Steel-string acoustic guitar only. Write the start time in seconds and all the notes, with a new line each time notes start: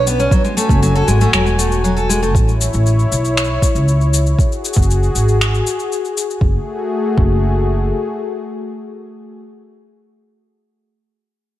0.07 B3
0.20 C#4
0.32 F#3
0.44 G#3
0.57 A3
0.82 F#3
0.95 A4
1.08 G#3
1.21 A3
1.33 F#3
1.46 G#3
1.59 A3
1.84 F#3
1.97 A4
2.09 G#3
2.23 A3